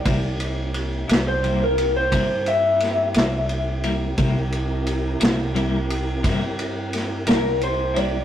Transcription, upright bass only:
X:1
M:12/8
L:1/8
Q:3/8=58
K:C
V:1 name="Upright bass" clef=bass
C,,3 C,,3 G,,3 C,,3 | C,,3 C,,3 G,,3 C,,3 |]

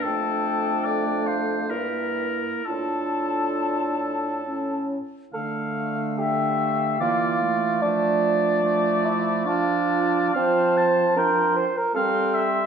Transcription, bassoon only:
X:1
M:3/4
L:1/16
Q:1/4=72
K:Dm
V:1 name="Bassoon"
F,,8 G,,4 | A,,8- A,,2 z2 | A4 G4 F4 | D6 E2 F4 |
c4 B2 c B A3 z |]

